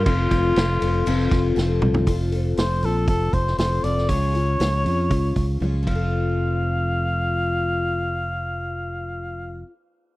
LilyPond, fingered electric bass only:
\new Staff \with { instrumentName = "Fingered electric bass" } { \clef bass \time 4/4 \key f \major \tempo 4 = 118 f,,8 f,,8 f,,8 f,,8 f,,8 f,,8 f,,8 c,8 | f,,4 f,,8 bes,,8 f,,8 f,,8 f,,8 f,,8 | des,4 des,8 f,8 des,8 des,8 des,8 f,,8~ | f,,1~ |
f,,1 | }